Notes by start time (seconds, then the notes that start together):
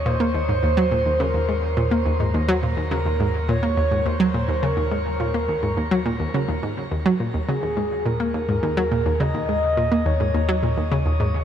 Already playing: D#2
0.06 A#2 C5
0.20 A#3
0.34 D#2
0.49 G#2
0.63 D#2
0.77 F#3
0.92 A#2
1.06 D#2
1.20 C#3 A#4
1.34 D#2
1.48 G#2
1.77 A#2
1.91 A#3
2.06 D#2
2.20 G#2
2.34 D#2
2.48 F#3
2.63 A#2
2.77 D#2
2.91 C#3 A#4
3.06 D#2
3.20 G#2
3.49 A#2 C#5
3.63 A#3
3.77 D#2
3.91 G#2
4.06 D#2 C5
4.20 F#3
4.34 A#2
4.48 D#2
4.63 C#3 A#4
4.77 D#2
4.91 G#2
5.20 A#2
5.34 A#3
5.49 D#2
5.63 G#2
5.77 D#2
5.91 F#3
6.06 A#2
6.20 D#2
6.34 C#3
6.49 D#2
6.63 G#2
6.91 D#2
7.06 F#3
7.20 A#2
7.34 D#2
7.48 C#3 G#4
7.63 D#2
7.77 G#2
8.05 A#2 A#4
8.20 A#3
8.34 D#2
8.49 G#2
8.63 D#2
8.77 F#3
8.91 A#2
9.06 D#2
9.20 C#3 D#5
9.34 D#2
9.49 G#2
9.77 A#2
9.92 A#3
10.06 D#2 C#5
10.20 G#2
10.34 D#2
10.49 F#3
10.63 A#2
10.77 D#2
10.92 C#3
11.06 D#2
11.20 G#2